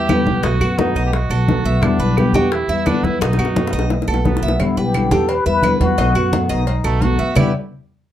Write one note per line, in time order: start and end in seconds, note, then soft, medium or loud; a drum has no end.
0.00 0.25 E2 medium
0.00 0.45 G4 loud
0.09 0.26 B2 medium
0.09 0.26 D3 medium
0.09 0.26 G3 medium
0.09 0.27 B3 medium
0.09 0.25 E4 medium
0.09 0.43 B4 medium
0.09 high bongo soft
0.09 low bongo medium
0.09 high conga medium
0.09 claves medium
0.26 0.42 C2 medium
0.26 0.44 G3 soft
0.26 0.43 B3 soft
0.26 0.43 E4 soft
0.26 high bongo soft
0.26 high conga medium
0.43 0.60 B1 loud
0.43 0.60 B2 medium
0.43 0.61 D#3 medium
0.43 0.61 A3 medium
0.43 0.61 B3 medium
0.43 0.60 D#4 medium
0.43 0.80 F#4 loud
0.43 0.60 F#4 medium
0.43 high bongo medium
0.43 high conga soft
0.60 0.94 F#2 medium
0.60 0.78 A3 soft
0.60 0.78 B3 soft
0.60 0.78 F#4 medium
0.60 0.95 F#4 medium
0.60 high bongo soft
0.60 high conga soft
0.60 claves medium
0.78 1.12 B2 medium
0.78 1.12 D#3 medium
0.78 1.12 A3 medium
0.78 1.13 B3 medium
0.78 1.05 D#4 medium
0.78 1.12 F#4 medium
0.78 high bongo medium
0.78 high conga loud
0.95 1.28 B1 medium
0.95 1.30 D#5 medium
0.95 high bongo soft
1.06 1.14 G4 medium
1.13 1.84 F#4 loud
1.13 muted nylon-string guitar stroke medium
1.13 high bongo medium
1.13 high conga soft
1.29 1.63 B1 medium
1.29 1.47 A3 soft
1.29 1.47 B3 soft
1.29 1.47 F#4 medium
1.29 1.64 A4 medium
1.29 high conga soft
1.29 claves medium
1.47 1.64 B2 medium
1.47 1.64 D#3 medium
1.47 1.65 A3 medium
1.47 1.64 B3 medium
1.47 1.63 F#4 medium
1.47 high bongo soft
1.47 low bongo medium
1.47 high conga medium
1.64 1.81 B1 medium
1.64 1.82 A3 soft
1.64 1.81 B3 soft
1.64 1.82 F#4 medium
1.64 1.99 E5 medium
1.64 high bongo soft
1.64 high conga soft
1.82 1.98 E2 loud
1.82 1.99 B2 medium
1.82 1.99 D3 medium
1.82 1.99 G3 medium
1.82 1.99 B3 medium
1.82 2.19 D4 medium
1.82 1.99 E4 medium
1.82 high bongo medium
1.82 high conga soft
1.82 claves medium
1.99 2.32 B1 medium
1.99 2.17 G3 soft
1.99 2.17 B3 soft
1.99 2.17 E4 medium
1.99 2.33 B4 medium
1.99 high bongo soft
1.99 high conga soft
2.17 2.50 B2 medium
2.17 2.51 D3 medium
2.17 2.51 G3 medium
2.17 2.51 B3 medium
2.17 2.51 E4 medium
2.17 2.36 G4 medium
2.17 high bongo medium
2.17 high conga medium
2.17 claves medium
2.33 2.67 E2 medium
2.33 2.54 F#4 loud
2.33 2.68 G4 medium
2.33 high bongo soft
2.33 high conga loud
2.52 2.88 E4 loud
2.52 high bongo medium
2.52 high conga soft
2.68 3.02 E2 medium
2.68 2.86 G3 soft
2.68 2.86 B3 soft
2.68 2.86 E4 medium
2.68 2.86 E5 medium
2.68 high conga soft
2.86 3.03 B2 medium
2.86 3.03 D3 medium
2.86 3.03 G3 medium
2.86 3.04 B3 medium
2.86 3.05 D4 loud
2.86 3.03 E4 medium
2.86 3.20 B4 medium
2.86 high bongo soft
2.86 low bongo medium
2.86 high conga medium
2.86 claves medium
3.03 3.20 E2 medium
3.03 3.21 G3 soft
3.03 3.21 B3 soft
3.03 3.21 E4 medium
3.03 3.21 E4 soft
3.03 high bongo soft
3.03 high conga medium
3.21 3.37 B1 loud
3.21 3.38 B2 medium
3.21 3.38 D#3 medium
3.21 3.38 A3 medium
3.21 3.38 B3 medium
3.21 3.38 D#4 medium
3.21 3.94 D#4 medium
3.21 3.38 F#4 medium
3.21 high bongo loud
3.21 high conga soft
3.33 high bongo loud
3.38 3.71 F#2 medium
3.38 3.56 A3 soft
3.38 3.56 B3 soft
3.38 3.72 F#4 medium
3.38 3.55 F#4 soft
3.38 high conga soft
3.38 claves medium
3.45 high bongo medium
3.56 3.90 B2 medium
3.56 3.90 D#3 medium
3.56 3.90 A3 medium
3.56 3.90 B3 medium
3.56 3.91 F#4 medium
3.56 low bongo medium
3.56 high conga medium
3.67 high bongo medium
3.73 4.06 B1 medium
3.73 4.07 D#5 medium
3.79 high bongo loud
3.90 muted nylon-string guitar stroke medium
3.90 low bongo loud
3.90 high conga soft
4.02 low bongo medium
4.08 4.41 B1 medium
4.08 4.25 A3 soft
4.08 4.25 B3 soft
4.08 4.25 F#4 medium
4.08 4.41 A4 medium
4.08 high conga soft
4.08 claves medium
4.14 low bongo medium
4.25 4.42 B2 medium
4.25 4.42 D#3 medium
4.25 4.42 A3 medium
4.25 4.57 B3 medium
4.25 4.43 B3 medium
4.25 4.42 F#4 medium
4.25 low bongo medium
4.25 high conga medium
4.37 low bongo medium
4.42 4.59 B1 medium
4.42 4.60 A3 soft
4.42 4.60 B3 soft
4.42 4.59 F#4 medium
4.42 4.59 E5 medium
4.42 high conga soft
4.48 low bongo loud
4.60 4.76 E2 loud
4.60 4.76 B2 medium
4.60 4.77 D3 medium
4.60 4.77 G3 medium
4.60 4.77 B3 medium
4.60 4.79 E4 medium
4.60 4.76 E4 medium
4.60 cowbell loud
4.60 high conga soft
4.60 claves medium
4.77 5.10 B1 medium
4.77 4.94 G3 soft
4.77 4.94 B3 soft
4.77 4.93 E4 medium
4.77 5.13 G4 medium
4.77 5.11 B4 medium
4.77 high conga soft
4.94 5.27 B2 medium
4.94 5.27 D3 medium
4.94 5.28 G3 medium
4.94 5.28 B3 medium
4.94 5.28 E4 medium
4.94 cowbell medium
4.94 high conga medium
4.94 claves medium
5.11 5.44 E2 medium
5.11 5.45 G4 medium
5.11 5.30 A4 medium
5.11 cowbell medium
5.11 high conga medium
5.28 5.46 B4 loud
5.28 muted nylon-string guitar stroke medium
5.28 cowbell loud
5.28 high conga soft
5.46 5.79 E2 medium
5.46 5.63 G3 soft
5.46 5.63 B3 soft
5.46 5.63 E4 medium
5.46 5.78 B4 loud
5.46 5.63 E5 medium
5.46 high conga soft
5.63 5.80 B2 medium
5.63 5.80 D3 medium
5.63 5.80 G3 medium
5.63 5.80 B3 medium
5.63 5.79 E4 medium
5.63 5.97 B4 medium
5.63 cowbell medium
5.63 high conga medium
5.63 claves medium
5.80 5.97 E2 medium
5.80 5.98 G3 soft
5.80 5.97 B3 soft
5.80 5.97 E4 soft
5.80 6.52 F#4 loud
5.80 cowbell medium
5.80 high conga medium
5.98 6.14 B1 loud
5.98 6.15 B2 medium
5.98 6.15 D#3 medium
5.98 6.15 A3 medium
5.98 6.15 B3 medium
5.98 6.15 D#4 medium
5.98 6.15 F#4 medium
5.98 cowbell loud
5.98 high conga soft
6.15 6.48 F#2 medium
6.15 6.32 A3 soft
6.15 6.33 B3 medium
6.15 6.49 F#4 medium
6.15 6.32 F#4 medium
6.15 high conga soft
6.15 claves medium
6.33 6.66 B2 medium
6.33 6.66 D#3 medium
6.33 6.66 A3 medium
6.33 6.67 B3 medium
6.33 6.67 F#4 medium
6.33 cowbell medium
6.33 high conga loud
6.49 6.83 B1 medium
6.49 7.02 D#4 medium
6.49 6.83 D#5 medium
6.49 cowbell medium
6.67 muted nylon-string guitar stroke medium
6.67 cowbell loud
6.67 high conga soft
6.84 7.17 B1 medium
6.84 7.04 A3 loud
6.84 7.02 A3 soft
6.84 7.01 B3 soft
6.84 7.01 F#4 medium
6.84 7.18 A4 medium
6.84 high conga soft
6.84 claves medium
7.01 7.18 B2 medium
7.01 7.19 D#3 medium
7.01 7.19 A3 medium
7.01 7.18 B3 medium
7.01 7.37 F#4 loud
7.01 7.18 F#4 medium
7.01 cowbell medium
7.01 high conga medium
7.19 7.35 D#2 medium
7.19 7.36 A3 soft
7.19 7.36 B3 soft
7.19 7.36 F#4 medium
7.19 7.36 E5 medium
7.19 high conga soft
7.35 7.50 E2 medium
7.35 7.52 E2 medium
7.35 7.50 B2 medium
7.35 7.50 D3 medium
7.35 7.51 G3 medium
7.35 7.51 B3 medium
7.35 7.52 E4 medium
7.35 7.51 E4 medium
7.35 7.53 G4 medium
7.35 7.52 B4 medium
7.35 7.52 D5 medium
7.35 low bongo loud
7.35 low conga loud
7.35 claves loud